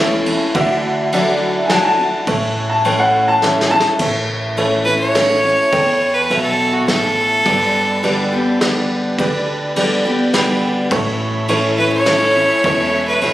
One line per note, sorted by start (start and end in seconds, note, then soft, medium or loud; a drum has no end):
0.00 0.35 E1 medium
0.00 0.25 E3 medium
0.00 0.25 A3 loud
0.00 0.25 C#4 medium
0.00 0.25 E4 loud
0.00 0.48 A4 medium
0.00 0.49 C#5 medium
0.00 0.48 E5 medium
0.26 0.54 C#4 medium
0.26 0.54 E4 medium
0.26 ride medium
0.55 2.07 D2 loud
0.55 1.64 D3 loud
0.55 1.06 F#4 loud
0.55 1.06 D5 medium
0.55 1.06 E5 loud
0.55 kick loud
0.55 ride medium
1.12 1.67 F#3 medium
1.12 1.67 A3 medium
1.12 1.68 D4 medium
1.12 1.68 E4 loud
1.12 1.63 F#4 medium
1.12 1.64 D5 medium
1.12 1.64 E5 medium
1.12 ride medium
1.66 1.69 G#5 medium
1.66 snare loud
1.66 ride medium
1.70 1.98 F#3 medium
1.70 1.98 A3 medium
1.70 1.99 D4 medium
1.70 1.98 E4 loud
1.70 2.21 F#4 medium
1.70 2.21 D5 medium
1.70 2.21 F#5 medium
1.70 1.83 A5 medium
1.80 1.84 G#5 medium
1.85 2.68 A5 loud
1.99 2.27 D4 medium
1.99 2.27 E4 medium
2.27 3.80 A1 loud
2.27 3.37 A2 loud
2.27 2.78 A4 medium
2.27 2.78 C#5 medium
2.27 2.78 E5 medium
2.27 kick loud
2.27 ride medium
2.70 2.98 A5 medium
2.84 3.40 E3 medium
2.84 3.40 A3 medium
2.84 3.40 C#4 medium
2.84 3.40 E4 medium
2.84 3.36 A4 medium
2.84 3.36 C#5 medium
2.84 3.36 G5 medium
2.84 ride medium
3.00 3.27 F#5 medium
3.28 3.69 A5 loud
3.42 3.70 E3 medium
3.42 3.71 A3 medium
3.42 3.71 C#4 loud
3.42 3.70 E4 loud
3.42 3.94 A4 medium
3.42 3.94 C#5 medium
3.42 3.94 E5 medium
3.42 snare medium
3.61 snare medium
3.67 3.70 G#5 medium
3.71 4.00 C#4 medium
3.71 3.99 E4 medium
3.71 3.99 A5 loud
3.80 snare medium
3.99 5.52 A1 medium
3.99 5.10 A2 medium
3.99 4.51 A4 medium
3.99 4.51 C#5 medium
3.99 4.51 E5 medium
3.99 kick loud
3.99 crash loud
4.57 4.85 E3 medium
4.57 4.85 A3 medium
4.57 4.85 C#4 medium
4.57 4.84 E4 medium
4.57 5.08 A4 medium
4.57 5.09 C#5 medium
4.57 5.09 E5 medium
4.57 ride medium
4.85 5.14 C#4 soft
4.85 5.14 E4 medium
4.85 4.98 B4 loud
4.99 6.16 C#5 loud
5.15 5.43 E3 medium
5.15 5.43 A3 medium
5.15 5.43 C#4 medium
5.15 5.42 E4 loud
5.15 5.66 A4 medium
5.15 5.66 C#5 medium
5.15 5.66 E5 medium
5.15 snare medium
5.15 ride medium
5.43 5.72 C#4 soft
5.43 5.71 E4 medium
5.72 6.82 E2 medium
5.72 6.24 E2 medium
5.72 6.23 A4 medium
5.72 6.23 C#5 medium
5.72 6.24 G5 loud
5.72 kick loud
5.72 ride medium
6.14 6.42 B4 medium
6.30 6.79 B1 medium
6.30 6.85 B2 medium
6.30 6.81 A4 medium
6.30 6.81 C#5 medium
6.30 6.81 E5 medium
6.30 ride medium
6.43 6.74 A4 medium
6.73 6.87 F#4 medium
6.88 7.37 A1 medium
6.88 7.43 A2 medium
6.88 7.39 A4 medium
6.88 8.57 A4 loud
6.88 7.39 C#5 medium
6.88 7.39 E5 medium
6.88 snare medium
6.88 ride medium
7.45 8.99 G1 medium
7.45 8.55 G2 medium
7.45 7.96 G4 medium
7.45 7.96 B4 medium
7.45 7.97 D5 medium
7.45 kick loud
7.45 ride medium
8.03 8.31 D3 medium
8.03 8.31 G3 medium
8.03 8.31 B3 medium
8.03 8.54 G4 medium
8.03 8.31 G4 loud
8.03 8.54 B4 medium
8.03 8.54 D5 medium
8.03 ride medium
8.32 8.61 B3 soft
8.32 8.60 G4 medium
8.61 9.16 D3 medium
8.61 9.16 G3 medium
8.61 9.17 B3 medium
8.61 9.12 G4 medium
8.61 9.17 G4 medium
8.61 9.12 B4 medium
8.61 9.12 D5 medium
8.61 snare medium
8.61 ride medium
9.19 10.71 D2 medium
9.19 9.75 D3 medium
9.19 9.70 G4 medium
9.19 9.70 B4 medium
9.19 9.70 D5 loud
9.19 kick loud
9.19 ride medium
9.76 10.04 D3 medium
9.76 10.04 G3 medium
9.76 10.05 B3 medium
9.76 10.27 G4 medium
9.76 10.04 G4 medium
9.76 10.28 B4 medium
9.76 10.28 D5 medium
9.76 ride medium
10.05 10.34 B3 medium
10.05 10.33 G4 medium
10.34 10.88 D3 medium
10.34 10.89 G3 medium
10.34 10.89 B3 medium
10.34 10.85 G4 medium
10.34 10.89 G4 medium
10.34 10.85 B4 medium
10.34 10.85 D5 medium
10.34 10.61 B5 medium
10.34 snare medium
10.34 ride medium
10.63 10.90 G5 medium
10.90 12.44 A1 loud
10.90 12.01 A2 medium
10.90 13.33 A3 medium
10.90 13.33 C#4 medium
10.90 13.33 E4 medium
10.90 11.42 E4 medium
10.90 11.42 A4 medium
10.90 13.33 C#5 medium
10.90 11.42 C#5 loud
10.90 13.33 E5 medium
10.90 kick loud
10.90 ride medium
11.48 11.76 E3 medium
11.48 11.77 A3 medium
11.48 11.77 C#4 medium
11.48 12.00 E4 medium
11.48 11.76 E4 medium
11.48 12.00 A4 medium
11.48 12.00 C#5 medium
11.48 ride medium
11.77 12.06 C#4 medium
11.77 12.05 E4 medium
11.77 11.91 B4 medium
11.93 13.04 C#5 loud
12.06 12.34 E3 medium
12.06 12.34 A3 medium
12.06 12.34 C#4 medium
12.06 12.57 E4 medium
12.06 12.34 E4 medium
12.06 12.57 A4 medium
12.06 12.57 C#5 medium
12.06 snare medium
12.06 ride medium
12.35 12.64 C#4 soft
12.35 12.63 E4 medium
12.64 13.15 E1 medium
12.64 13.33 E2 loud
12.64 13.15 E4 medium
12.64 13.16 A4 medium
12.64 13.16 C#5 loud
12.64 kick loud
12.64 ride medium
13.08 13.33 B4 medium
13.22 13.33 B1 medium
13.22 13.33 B2 medium
13.22 13.33 E4 medium
13.22 13.33 A4 medium
13.22 13.33 C#5 medium
13.22 ride medium